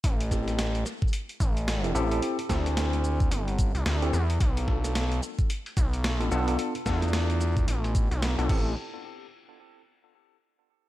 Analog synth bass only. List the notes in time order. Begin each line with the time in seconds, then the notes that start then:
0.04 A1
1.40 A1
1.95 A1
2.50 D2
3.31 G1
3.75 C2
3.86 D2
4.13 E2
4.41 B1
5.77 B1
6.14 A#1
6.32 B1
6.86 E2
7.68 A1
8.11 B1
8.39 B1
8.49 A1